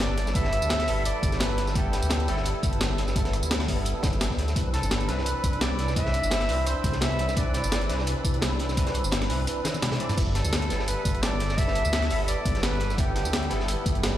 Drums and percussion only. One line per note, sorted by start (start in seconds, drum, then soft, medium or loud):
0.00 closed hi-hat medium
0.17 snare soft
0.17 closed hi-hat medium
0.27 snare medium
0.27 tambourine soft
0.35 kick loud
0.35 closed hi-hat medium
0.35 tambourine soft
0.44 snare soft
0.53 cross-stick soft
0.53 closed hi-hat medium
0.53 tambourine soft
0.62 tambourine medium
0.70 snare loud
0.70 closed hi-hat medium
0.70 tambourine soft
0.79 cross-stick medium
0.79 snare medium
0.79 snare soft
0.79 closed hi-hat soft
0.88 closed hi-hat medium
0.88 open hi-hat medium
0.88 tambourine soft
1.05 closed hi-hat loud
1.05 closed hi-hat medium
1.05 tambourine soft
1.23 kick loud
1.23 closed hi-hat medium
1.23 tambourine medium
1.32 snare soft
1.32 closed hi-hat soft
1.40 snare loud
1.40 closed hi-hat medium
1.40 tambourine soft
1.50 closed hi-hat soft
1.58 snare soft
1.58 closed hi-hat medium
1.67 snare soft
1.67 tambourine soft
1.75 kick loud
1.75 closed hi-hat medium
1.75 tambourine soft
1.93 cross-stick soft
1.93 snare soft
1.93 closed hi-hat medium
1.93 tambourine soft
2.02 closed hi-hat soft
2.02 tambourine medium
2.10 snare loud
2.10 closed hi-hat medium
2.10 tambourine soft
2.20 closed hi-hat soft
2.28 snare soft
2.28 closed hi-hat medium
2.28 tambourine soft
2.37 snare soft
2.45 closed hi-hat medium
2.45 tambourine soft
2.63 kick loud
2.63 closed hi-hat medium
2.63 tambourine medium
2.73 closed hi-hat soft
2.81 snare loud
2.81 closed hi-hat medium
2.81 tambourine soft
2.98 snare soft
2.98 closed hi-hat medium
3.08 snare medium
3.08 tambourine soft
3.16 kick loud
3.16 closed hi-hat medium
3.16 closed hi-hat loud
3.16 tambourine soft
3.25 snare soft
3.25 closed hi-hat soft
3.33 cross-stick soft
3.33 closed hi-hat medium
3.33 tambourine soft
3.43 tambourine medium
3.51 snare loud
3.51 closed hi-hat medium
3.51 tambourine soft
3.60 cross-stick medium
3.60 snare medium
3.60 snare soft
3.60 closed hi-hat soft
3.68 kick medium
3.68 closed hi-hat medium
3.68 open hi-hat medium
3.68 tambourine soft
3.85 closed hi-hat medium
3.85 tambourine soft
4.03 kick loud
4.03 snare loud
4.03 closed hi-hat medium
4.03 tambourine medium
4.13 closed hi-hat soft
4.21 snare loud
4.21 snare soft
4.21 closed hi-hat medium
4.21 tambourine medium
4.30 kick medium
4.30 snare soft
4.39 snare soft
4.39 closed hi-hat medium
4.48 snare soft
4.48 closed hi-hat soft
4.48 tambourine soft
4.56 kick loud
4.56 closed hi-hat medium
4.56 tambourine soft
4.74 cross-stick soft
4.74 snare soft
4.74 closed hi-hat medium
4.74 tambourine soft
4.83 closed hi-hat soft
4.83 tambourine medium
4.91 snare loud
4.91 closed hi-hat medium
4.91 tambourine soft
5.01 closed hi-hat soft
5.09 snare soft
5.09 closed hi-hat medium
5.09 tambourine soft
5.18 snare soft
5.26 closed hi-hat loud
5.26 closed hi-hat medium
5.26 tambourine medium
5.44 kick loud
5.44 closed hi-hat medium
5.44 tambourine medium
5.53 closed hi-hat soft
5.61 snare loud
5.61 closed hi-hat medium
5.61 tambourine medium
5.79 snare soft
5.79 closed hi-hat medium
5.88 snare soft
5.88 tambourine soft
5.96 kick loud
5.96 closed hi-hat medium
5.96 tambourine soft
6.06 snare medium
6.14 cross-stick soft
6.14 closed hi-hat medium
6.14 tambourine soft
6.23 tambourine medium
6.31 snare loud
6.31 closed hi-hat medium
6.31 tambourine medium
6.40 cross-stick medium
6.40 snare medium
6.40 snare soft
6.40 closed hi-hat soft
6.49 closed hi-hat medium
6.49 open hi-hat medium
6.49 tambourine soft
6.67 closed hi-hat medium
6.67 tambourine medium
6.84 kick loud
6.84 closed hi-hat medium
6.84 tambourine medium
6.93 snare medium
6.93 closed hi-hat soft
7.01 snare loud
7.01 closed hi-hat medium
7.01 tambourine medium
7.11 closed hi-hat soft
7.19 snare soft
7.19 closed hi-hat medium
7.28 snare soft
7.28 tambourine soft
7.37 kick loud
7.37 closed hi-hat medium
7.37 tambourine medium
7.54 cross-stick soft
7.54 snare soft
7.54 closed hi-hat medium
7.54 tambourine soft
7.64 closed hi-hat soft
7.64 tambourine medium
7.72 snare loud
7.72 closed hi-hat medium
7.72 closed hi-hat loud
7.72 tambourine soft
7.81 closed hi-hat soft
7.90 snare soft
7.90 closed hi-hat medium
7.90 tambourine soft
7.98 snare soft
8.07 closed hi-hat medium
8.07 closed hi-hat loud
8.07 tambourine medium
8.24 kick loud
8.24 closed hi-hat medium
8.24 tambourine medium
8.34 closed hi-hat soft
8.42 snare loud
8.42 closed hi-hat loud
8.42 closed hi-hat medium
8.42 tambourine medium
8.59 snare soft
8.59 closed hi-hat medium
8.69 snare medium
8.69 tambourine soft
8.77 kick loud
8.77 closed hi-hat medium
8.77 tambourine soft
8.86 snare soft
8.86 closed hi-hat soft
8.94 cross-stick soft
8.94 closed hi-hat medium
8.94 tambourine soft
9.04 tambourine medium
9.11 snare loud
9.11 closed hi-hat medium
9.11 tambourine medium
9.21 cross-stick medium
9.21 snare medium
9.21 snare soft
9.21 closed hi-hat soft
9.30 closed hi-hat medium
9.30 open hi-hat medium
9.30 tambourine soft
9.47 closed hi-hat loud
9.47 tambourine medium
9.65 snare loud
9.65 closed hi-hat medium
9.65 high tom medium
9.65 tambourine medium
9.74 closed hi-hat soft
9.74 high tom medium
9.74 tambourine soft
9.82 snare loud
9.82 snare soft
9.82 closed hi-hat loud
9.82 closed hi-hat medium
9.82 mid tom medium
9.82 tambourine medium
9.92 snare loud
9.92 closed hi-hat medium
9.92 mid tom medium
10.00 closed hi-hat medium
10.09 snare soft
10.09 closed hi-hat soft
10.09 closed hi-hat medium
10.09 mid tom medium
10.09 tambourine soft
10.18 kick loud
10.18 closed hi-hat medium
10.18 closed hi-hat loud
10.18 tambourine soft
10.18 crash medium
10.35 cross-stick soft
10.35 snare soft
10.35 closed hi-hat medium
10.35 tambourine soft
10.45 closed hi-hat soft
10.45 tambourine medium
10.53 snare loud
10.53 closed hi-hat medium
10.53 tambourine soft
10.62 closed hi-hat soft
10.70 snare soft
10.70 closed hi-hat medium
10.70 tambourine soft
10.79 snare soft
10.88 closed hi-hat medium
10.88 closed hi-hat loud
10.88 tambourine medium
11.05 kick loud
11.05 closed hi-hat medium
11.05 tambourine medium
11.15 closed hi-hat soft
11.23 snare loud
11.23 closed hi-hat loud
11.23 closed hi-hat medium
11.23 tambourine medium
11.40 snare soft
11.40 closed hi-hat medium
11.49 snare soft
11.49 tambourine soft
11.58 kick loud
11.58 closed hi-hat medium
11.58 tambourine soft
11.68 snare medium
11.75 cross-stick soft
11.75 closed hi-hat medium
11.75 tambourine soft
11.85 tambourine medium
11.93 snare loud
11.93 closed hi-hat medium
11.93 tambourine soft
12.02 cross-stick medium
12.02 snare soft
12.02 snare medium
12.02 closed hi-hat soft
12.10 closed hi-hat medium
12.10 open hi-hat medium
12.10 tambourine soft
12.28 closed hi-hat loud
12.28 tambourine soft
12.45 kick loud
12.45 closed hi-hat medium
12.45 tambourine medium
12.55 snare soft
12.55 closed hi-hat soft
12.63 snare loud
12.63 closed hi-hat medium
12.63 closed hi-hat loud
12.63 tambourine soft
12.73 closed hi-hat soft
12.80 snare soft
12.80 closed hi-hat medium
12.90 snare soft
12.90 tambourine soft
12.98 kick loud
12.98 closed hi-hat medium
12.98 tambourine soft
13.15 cross-stick soft
13.15 snare soft
13.15 closed hi-hat medium
13.15 tambourine soft
13.25 closed hi-hat soft
13.25 tambourine medium
13.33 snare loud
13.33 closed hi-hat medium
13.33 tambourine soft
13.43 closed hi-hat soft
13.50 snare soft
13.50 closed hi-hat medium
13.50 tambourine soft
13.60 snare medium
13.68 closed hi-hat loud
13.68 closed hi-hat medium
13.68 tambourine soft
13.86 kick loud
13.86 closed hi-hat medium
13.86 tambourine medium
13.95 closed hi-hat soft
14.03 snare loud
14.03 closed hi-hat medium
14.03 tambourine soft